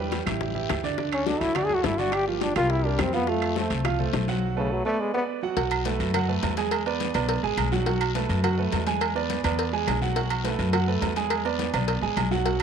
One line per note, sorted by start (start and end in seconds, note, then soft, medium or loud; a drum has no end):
0.00 0.21 E2 medium
0.00 0.21 G3 medium
0.00 0.21 G4 medium
0.00 0.21 B4 medium
0.12 high bongo medium
0.12 high conga medium
0.12 high timbale medium
0.12 short guiro medium
0.26 0.66 A1 medium
0.26 0.49 E3 medium
0.26 0.50 E4 medium
0.26 0.50 G4 medium
0.26 high bongo soft
0.26 high conga medium
0.26 high timbale medium
0.26 short guiro medium
0.26 claves medium
0.41 high bongo medium
0.41 low conga medium
0.41 long guiro medium
0.55 0.78 E3 medium
0.55 0.78 E4 medium
0.55 0.79 G4 medium
0.55 high bongo soft
0.55 low conga medium
0.69 1.36 D2 medium
0.69 high bongo medium
0.69 low bongo medium
0.69 low conga medium
0.69 high timbale medium
0.69 low timbale medium
0.69 short guiro medium
0.69 claves medium
0.84 0.95 D3 medium
0.84 0.95 D4 medium
0.84 0.96 D5 medium
0.84 low conga medium
0.84 short guiro medium
0.98 1.22 D3 medium
0.98 1.22 D4 medium
0.98 1.22 D5 medium
0.98 high bongo medium
0.98 high conga soft
0.98 long guiro medium
1.12 1.29 C#4 medium
1.12 high conga soft
1.12 high timbale medium
1.12 claves medium
1.26 1.50 F#3 medium
1.26 1.42 D4 medium
1.26 1.50 F#4 medium
1.26 1.51 A4 medium
1.26 high bongo medium
1.26 high conga medium
1.26 short guiro medium
1.41 1.81 D2 medium
1.41 1.58 E4 medium
1.41 high bongo soft
1.41 high timbale medium
1.41 short guiro medium
1.55 1.67 D3 medium
1.55 1.67 D4 medium
1.55 1.67 F#4 medium
1.55 1.68 D5 medium
1.55 high bongo medium
1.55 high conga soft
1.55 low conga medium
1.55 high timbale loud
1.55 long guiro medium
1.55 claves medium
1.65 1.76 G#4 loud
1.69 1.93 F#3 medium
1.69 1.93 F#4 medium
1.69 1.94 A4 medium
1.69 high bongo soft
1.69 high conga soft
1.69 low conga medium
1.75 1.86 F#4 medium
1.84 2.51 G1 medium
1.84 2.01 E4 medium
1.84 high bongo medium
1.84 low bongo medium
1.84 high conga medium
1.84 high timbale medium
1.84 low timbale medium
1.84 short guiro medium
1.98 2.22 D3 medium
1.98 2.22 D4 medium
1.98 2.16 F#4 medium
1.98 2.22 D5 medium
1.98 high bongo soft
1.98 short guiro medium
2.12 2.27 G4 loud
2.12 high bongo medium
2.12 high timbale medium
2.12 long guiro medium
2.12 claves medium
2.27 2.51 F3 medium
2.27 2.44 A#3 medium
2.27 2.51 F4 medium
2.27 2.51 G4 medium
2.27 high conga soft
2.41 2.56 D4 medium
2.41 high bongo medium
2.41 high conga medium
2.41 high timbale medium
2.41 short guiro medium
2.56 2.96 C2 loud
2.56 2.79 G3 medium
2.56 2.72 F4 loud
2.56 2.79 G4 medium
2.56 2.80 A#4 medium
2.56 high bongo soft
2.56 high conga soft
2.56 high timbale medium
2.56 short guiro medium
2.56 claves medium
2.70 2.87 E4 loud
2.70 high bongo medium
2.70 high conga soft
2.70 long guiro medium
2.84 3.08 G3 medium
2.84 3.02 D4 medium
2.84 3.08 G4 medium
2.84 3.08 A#4 medium
2.84 high bongo soft
2.84 high conga soft
2.98 3.65 F2 loud
2.98 3.14 C4 medium
2.98 high bongo medium
2.98 low bongo medium
2.98 high conga medium
2.98 high timbale loud
2.98 low timbale medium
2.98 short guiro medium
2.98 claves medium
3.13 3.25 F3 medium
3.13 3.30 B3 loud
3.13 3.25 F4 medium
3.13 3.25 F5 medium
3.13 high conga medium
3.13 short guiro medium
3.27 3.51 F3 medium
3.27 3.71 A3 medium
3.27 3.51 F4 medium
3.27 3.51 F5 medium
3.27 high bongo medium
3.27 high conga soft
3.27 long guiro medium
3.42 high timbale medium
3.42 claves medium
3.56 3.80 A3 medium
3.56 3.80 A4 medium
3.56 3.80 C5 medium
3.56 high bongo medium
3.56 high conga medium
3.56 short guiro medium
3.70 4.10 C2 loud
3.70 high bongo soft
3.70 high timbale medium
3.70 short guiro medium
3.85 3.97 F3 medium
3.85 3.97 F4 medium
3.85 3.97 F5 medium
3.85 high bongo medium
3.85 high conga soft
3.85 low conga medium
3.85 high timbale loud
3.85 long guiro medium
3.85 claves medium
3.99 4.23 A3 medium
3.99 4.23 A4 medium
3.99 4.23 C5 medium
3.99 high bongo soft
3.99 high conga soft
3.99 low conga medium
4.13 4.80 B1 medium
4.13 high bongo medium
4.13 low bongo medium
4.13 high conga medium
4.13 high timbale medium
4.13 short guiro medium
4.27 4.51 F#3 medium
4.27 4.52 F#4 medium
4.27 4.52 F#5 medium
4.27 high bongo soft
4.27 high conga medium
4.27 short guiro medium
4.57 4.73 C#3 medium
4.57 4.80 A3 medium
4.57 4.80 A4 medium
4.57 4.80 B4 medium
4.72 4.85 F#3 medium
4.85 5.02 A3 loud
4.85 5.09 B3 medium
4.85 5.09 B4 medium
4.85 5.10 D5 medium
5.00 5.13 G#3 medium
5.14 5.23 B3 medium
5.14 5.38 B3 medium
5.14 5.38 B4 medium
5.14 5.38 D5 medium
5.43 5.54 F#3 medium
5.43 5.55 F#4 medium
5.43 5.55 F#5 medium
5.56 5.97 B1 loud
5.56 5.80 F#3 medium
5.56 5.81 F#4 medium
5.56 5.81 F#5 medium
5.56 cowbell loud
5.56 high conga soft
5.56 low agogo medium
5.56 long guiro medium
5.71 cowbell medium
5.71 high conga soft
5.71 low agogo loud
5.71 claves medium
5.85 6.09 A3 medium
5.85 6.09 A4 medium
5.85 6.09 B4 medium
5.85 cowbell medium
5.85 high conga medium
5.85 short guiro medium
6.00 6.40 F#2 loud
6.00 low agogo medium
6.00 short guiro medium
6.14 6.26 F#3 medium
6.14 6.26 F#4 medium
6.14 6.26 F#5 medium
6.14 cowbell loud
6.14 high conga soft
6.14 low conga medium
6.14 low agogo loud
6.14 long guiro medium
6.14 claves medium
6.28 6.52 A3 medium
6.28 6.52 A4 medium
6.28 6.52 B4 medium
6.28 high conga soft
6.43 7.09 E2 medium
6.43 cowbell medium
6.43 high conga medium
6.43 low timbale medium
6.43 low agogo medium
6.43 short guiro medium
6.57 6.81 G#3 medium
6.57 6.81 G#4 medium
6.57 6.81 G#5 medium
6.57 cowbell medium
6.57 short guiro medium
6.71 cowbell loud
6.71 low agogo loud
6.71 long guiro medium
6.71 claves medium
6.86 7.10 B3 medium
6.86 7.10 B4 medium
6.86 7.10 D5 medium
6.86 high conga soft
6.86 low agogo medium
7.00 cowbell medium
7.00 high conga medium
7.00 short guiro medium
7.14 7.42 B1 loud
7.14 7.38 B3 medium
7.14 7.38 B4 medium
7.14 7.38 D5 medium
7.14 cowbell medium
7.14 high conga soft
7.14 low agogo loud
7.14 short guiro medium
7.14 claves medium
7.29 cowbell loud
7.29 low agogo medium
7.29 long guiro medium
7.43 7.57 A1 medium
7.43 7.67 G#3 medium
7.43 7.67 G#4 medium
7.43 7.67 G#5 loud
7.43 high conga soft
7.57 8.24 B1 loud
7.57 cowbell medium
7.57 high conga medium
7.57 low agogo loud
7.57 short guiro medium
7.57 claves medium
7.72 7.84 F#3 medium
7.72 7.84 F#4 medium
7.72 7.84 F#5 medium
7.72 high conga medium
7.72 short guiro medium
7.86 8.10 F#3 medium
7.86 8.10 F#4 medium
7.86 8.10 F#5 medium
7.86 cowbell loud
7.86 high conga soft
7.86 low agogo medium
7.86 long guiro medium
8.01 cowbell medium
8.01 low agogo loud
8.01 claves medium
8.15 8.38 A3 medium
8.15 8.39 A4 medium
8.15 8.39 B4 medium
8.15 cowbell medium
8.15 high conga medium
8.15 short guiro medium
8.29 8.69 F#2 loud
8.29 low agogo medium
8.29 short guiro medium
8.43 8.55 F#3 medium
8.43 8.56 F#4 medium
8.43 8.56 F#5 medium
8.43 cowbell loud
8.43 high conga soft
8.43 low conga medium
8.43 low agogo loud
8.43 long guiro medium
8.43 claves medium
8.58 8.82 A3 medium
8.58 8.82 A4 medium
8.58 8.82 B4 medium
8.58 high conga soft
8.72 9.39 E2 loud
8.72 cowbell medium
8.72 high conga medium
8.72 low timbale medium
8.72 low agogo medium
8.72 short guiro medium
8.87 9.10 G#3 medium
8.87 9.10 G#4 medium
8.87 9.11 G#5 loud
8.87 cowbell medium
8.87 high conga medium
8.87 short guiro medium
9.01 cowbell loud
9.01 high conga soft
9.01 low agogo loud
9.01 long guiro medium
9.01 claves medium
9.15 9.39 B3 medium
9.15 9.39 B4 medium
9.15 9.39 D5 medium
9.15 high conga soft
9.15 low agogo medium
9.30 cowbell medium
9.30 high conga medium
9.30 short guiro medium
9.44 9.84 E2 loud
9.44 9.68 B3 medium
9.44 9.68 B4 medium
9.44 9.68 D5 medium
9.44 cowbell medium
9.44 high conga soft
9.44 low agogo loud
9.44 short guiro medium
9.44 claves medium
9.59 cowbell loud
9.59 high conga soft
9.59 low agogo medium
9.59 long guiro medium
9.73 9.96 G#3 medium
9.73 9.97 G#4 medium
9.73 9.97 G#5 medium
9.73 high conga soft
9.87 10.54 B1 medium
9.87 cowbell medium
9.87 high conga medium
9.87 low timbale medium
9.87 low agogo loud
9.87 short guiro medium
9.87 claves medium
10.01 10.13 F#3 medium
10.01 10.14 F#4 medium
10.01 10.14 F#5 medium
10.01 high conga medium
10.01 short guiro medium
10.16 10.40 F#3 medium
10.16 10.40 F#4 medium
10.16 10.40 F#5 medium
10.16 cowbell loud
10.16 high conga soft
10.16 low agogo medium
10.16 long guiro medium
10.30 cowbell medium
10.30 high conga soft
10.30 low agogo loud
10.30 claves medium
10.44 10.68 A3 medium
10.44 10.68 A4 medium
10.44 10.68 B4 medium
10.44 cowbell medium
10.44 high conga medium
10.44 short guiro medium
10.59 10.99 F#2 loud
10.59 low agogo medium
10.59 short guiro medium
10.73 10.85 F#3 medium
10.73 10.85 F#4 medium
10.73 10.85 F#5 medium
10.73 cowbell loud
10.73 high conga soft
10.73 low conga medium
10.73 low agogo loud
10.73 long guiro medium
10.73 claves medium
10.87 11.11 A3 medium
10.87 11.11 A4 medium
10.87 11.11 B4 medium
10.87 high conga soft
11.02 11.68 E2 medium
11.02 cowbell medium
11.02 high conga medium
11.02 low timbale medium
11.02 low agogo medium
11.02 short guiro medium
11.16 11.40 G#3 medium
11.16 11.40 G#4 medium
11.16 11.40 G#5 medium
11.16 cowbell medium
11.16 high conga medium
11.16 short guiro medium
11.30 cowbell loud
11.30 high conga soft
11.30 low agogo loud
11.30 long guiro medium
11.30 claves medium
11.45 11.69 B3 medium
11.45 11.69 B4 medium
11.45 11.69 D5 medium
11.45 high conga soft
11.45 low agogo medium
11.59 cowbell medium
11.59 high conga medium
11.59 short guiro medium
11.73 12.00 B1 loud
11.73 11.97 B3 medium
11.73 11.97 B4 medium
11.73 11.98 D5 medium
11.73 cowbell medium
11.73 high conga soft
11.73 low agogo loud
11.73 short guiro medium
11.73 claves medium
11.88 cowbell loud
11.88 low agogo medium
11.88 long guiro medium
12.02 12.16 A1 medium
12.02 12.26 G#3 medium
12.02 12.26 G#4 medium
12.02 12.26 G#5 medium
12.17 12.63 B1 loud
12.17 cowbell medium
12.17 high conga medium
12.17 low timbale medium
12.17 low agogo loud
12.17 short guiro medium
12.17 claves medium
12.31 12.43 F#3 medium
12.31 12.43 F#4 medium
12.31 12.43 F#5 medium
12.31 high conga medium
12.31 short guiro medium
12.45 12.63 F#3 medium
12.45 12.63 F#4 medium
12.45 12.63 F#5 medium
12.45 cowbell loud
12.45 high conga soft
12.45 low agogo medium
12.45 long guiro medium